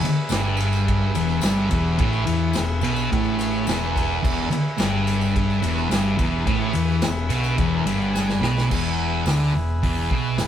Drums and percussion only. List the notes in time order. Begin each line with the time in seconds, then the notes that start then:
0.01 ride, tambourine
0.29 snare, ride, tambourine
0.57 ride, tambourine
0.73 tambourine
0.88 kick, ride
1.15 ride, tambourine
1.28 tambourine
1.41 snare, ride, tambourine
1.70 kick, ride, tambourine
1.99 kick, ride
2.13 tambourine
2.27 ride, tambourine
2.53 snare, ride, tambourine
2.81 ride, tambourine
2.96 tambourine
3.12 kick, ride
3.24 tambourine
3.39 ride, tambourine
3.53 tambourine
3.67 snare, ride, tambourine
3.96 kick, ride, tambourine
4.24 kick, crash
4.37 tambourine
4.51 ride, tambourine
4.78 snare, ride, tambourine
5.07 ride, tambourine
5.21 tambourine
5.36 kick, ride
5.50 tambourine
5.63 ride, tambourine
5.78 tambourine
5.91 snare, ride, tambourine
6.19 kick, ride, tambourine
6.47 kick, ride
6.73 ride, tambourine
6.88 tambourine
7.02 snare, ride, tambourine
7.30 ride, tambourine
7.44 tambourine
7.58 kick, ride, tambourine
7.87 ride, tambourine
8.02 tambourine
8.15 snare, tambourine
8.29 snare, tambourine
8.43 snare, tambourine
8.58 snare
8.71 kick, crash
9.26 snare, open hi-hat, tambourine
9.83 kick, open hi-hat
10.11 kick
10.38 snare, open hi-hat, tambourine